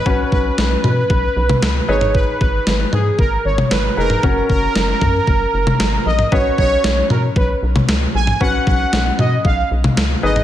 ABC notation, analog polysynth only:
X:1
M:4/4
L:1/8
Q:1/4=115
K:Cblyd
V:1 name="Analog polysynth"
=B B6 d | c c2 A B d c B- | B B6 e | ^c c2 B =B z2 a |
^f f2 e =f z2 e |]